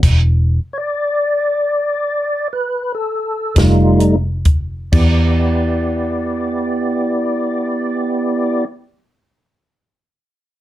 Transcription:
<<
  \new Staff \with { instrumentName = "Tonewheel organ" } { \time 12/8 \key e \minor \tempo 4. = 42 r4 <cis'' d''>2~ <cis'' d''>16 b'8 a'8. <g a ees' f'>8 r4 | <b e' g' d''>1. | }
  \new Staff \with { instrumentName = "Fingered electric bass" } { \clef bass \time 12/8 \key e \minor e,,4 r2. r8 f,,4. | e,1. | }
  \new DrumStaff \with { instrumentName = "Drums" } \drummode { \time 12/8 <cymc hh bd>4. r4. r4. <hh bd sn>8 hh8 <hh bd>8 | <cymc bd>4. r4. r4. r4. | }
>>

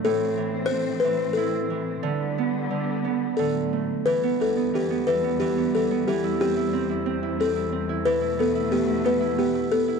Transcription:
<<
  \new Staff \with { instrumentName = "Kalimba" } { \time 3/4 \key e \minor \tempo 4 = 90 a'4 c''8 b'8 a'4~ | a'2 a'4 | b'8 a'8 g'8 b'8 g'8 a'8 | g'8 g'4. a'4 |
b'8 a'8 g'8 b'8 g'8 a'8 | }
  \new Staff \with { instrumentName = "Harp" } { \time 3/4 \key e \minor a,8 e8 c'8 e8 e'8 e8 | d8 b8 d8 b8 d8 a8 | e16 b16 e16 b16 e16 b16 e16 b16 e16 b16 e16 b16 | e16 e'16 c'16 e'16 c'16 e'16 c'16 e'16 c'16 e'16 c'16 e'16 |
e16 e'16 b16 e'16 b16 e'16 b16 e'16 b16 e'16 b16 e'16 | }
  \new Staff \with { instrumentName = "String section" } { \clef bass \time 3/4 \key e \minor << { c'2. | b2 fis4 | g2.~ | g2. |
a2. | } \\ { <a, e>2. | <d g>2 <d, a,>4 | <e, d>2. | <e, c>2. |
<b, e>2. | } >> }
>>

